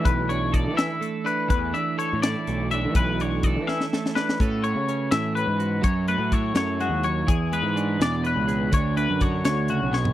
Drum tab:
HH |x-x-x-x-x-x-|x-x-x-x-x-x-|x-x-x-------|x-x-x-x-x-x-|
SD |------o-----|------o-----|------oooooo|------o-----|
FT |------------|------------|------------|------------|
BD |o---o-------|o-----------|o---o-------|o-----------|

HH |x-x-x-x-x-x-|x-x-x-x-x-x-|x-x-x-x-x---|
SD |------o-----|------o-----|------o---o-|
FT |------------|------------|-----------o|
BD |o---o-------|o-----------|o---o-------|